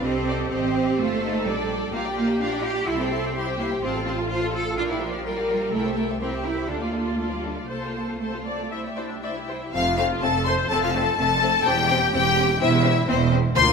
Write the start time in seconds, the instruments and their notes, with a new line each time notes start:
0.02 double bass section C2, cello section C4, viola section G4, violin section A4 D#5
0.28 violin section D5
0.51 double bass section A1, cello section C4, violin section G4 C5 D#5
0.98 double bass section G1, cello section A3, violin section F4 C5 F5, viola section A4
1.23 violin section D#4
1.46 double bass section A#1, cello section G3, violin section D4 D5 G5
1.93 double bass section A#1, cello section A#3, violin section F4 F5 A#5, viola section G4
2.05 violin section G4 D5 G5
2.16 cello section A#3, violin section F4 F5 A#5
2.27 violin section G4 D5 G5
2.40 cello section D4, violin section F4 F5 A#5
2.51 violin section G4 D5 G5
2.64 violin section F4 F5 A#5, cello section G4
2.76 violin section G4 D5 G5
2.88 double bass section C2, cello section E4, violin section E4 E5 C6, viola section A4
3.00 cello section C4, violin section G4 C5 G5
3.10 violin section E4 E5 C6
3.23 violin section G4 C5 G5
3.36 violin section E4 E5 C6, viola section G4
3.47 violin section G4 C5 G5
3.59 cello section A#3, violin section E4 E5 C6
3.70 violin section G4 C5 G5
3.81 double bass section A1, cello section C4, violin section F4 C5 A5, viola section F4
3.94 violin section A4 F5
4.05 cello section C4, violin section F4 C5 A5
4.18 violin section A4 F5
4.30 cello section F4, violin section F4 C5 A5
4.41 violin section A4 F5
4.52 violin section F4 C5 A5, cello section A4
4.64 violin section A4 F5
4.77 double bass section A#1, viola section D4, violin section F4 A#4 G5, cello section F4
4.88 cello section E4, violin section G4 D5 F5
5.00 cello section F3, violin section F4 A#4 G5
5.12 violin section G4 D5 F5
5.24 cello section G3, violin section F4 A#4 G5, viola section A#4
5.36 violin section G4 D5 F5
5.48 violin section F4 A#4 G5
5.61 violin section G4 D5 F5
5.72 double bass section C2, cello section A3, violin section E4 A#4 G5, viola section A4
5.83 violin section G4 C5 E5
5.96 cello section A3, violin section E4 A#4 G5
6.08 violin section G4 C5 E5
6.20 cello section C4, violin section E4 A#4 G5, viola section G4
6.31 violin section G4 C5 E5
6.44 violin section E4 A#4 G5, cello section E4
6.55 violin section G4 C5 E5
6.67 double bass section D2, violin section D4 A4 D5, cello section D4, viola section F4
6.80 cello section A#3, violin section F4 D5 F5
6.93 violin section D4 A4 D5
7.05 violin section F4 D5 F5
7.18 cello section A3, violin section D4 A4 D5
7.30 cello section G3, violin section F4 D5 F5
7.43 violin section D4 A4 D5
7.55 violin section F4 D5 F5
7.68 double bass section C2, cello section A#3, violin section A4 C5 A5, viola section C5
7.82 violin section F4 A4 F5
7.94 violin section A4 C5 A5
8.07 violin section F4 A4 F5
8.20 cello section A3, violin section A4 C5 A5, viola section C5
8.32 violin section F4 A4 F5
8.45 violin section A4 C5 A5, viola section D5
8.58 violin section F4 A4 F5
8.69 violin section E4 C5 G5, viola section E5
8.84 violin section G4 E5
8.96 viola section D4 C5, violin section E4 C5 D5 G5
9.09 violin section G4 E5
9.22 violin section E4 C5 E5 G5, viola section E4 D5
9.35 violin section G4 E5
9.47 violin section E4 C5 G5, viola section C5
9.60 violin section G4 E5
9.73 double bass section F1, cello section F2, violin section A3 C4 F5, viola section F4
9.96 violin section A3 C4 F5, viola section F4
10.21 double bass section F1, cello section F2, violin section A3 C4 A5, viola section A4
10.45 violin section A3 C4 C6, viola section C5
10.69 double bass section F1, cello section F2, violin section A3 C4 A5, viola section A4
10.82 viola section F4, violin section F5
10.93 violin section A3 C4 A5, viola section A4
11.16 double bass section F1, cello section F2, violin section A3 C4 A5, viola section A4
11.42 violin section A3 C4
11.65 double bass section E1, cello section E2, violin section C4 G5, viola section G4
11.89 violin section C4
12.12 double bass section E1, cello section E2, violin section C4 G5, viola section G4
12.37 violin section C4
12.60 double bass section E1, cello section E2, violin section C4 E5, viola section E4
12.83 violin section C4
13.07 double bass section E1, cello section E2, violin section C4 C5, viola section C4
13.31 violin section C4
13.54 cello section D2, double bass section D2, violin section A#3 F4 C6, viola section C5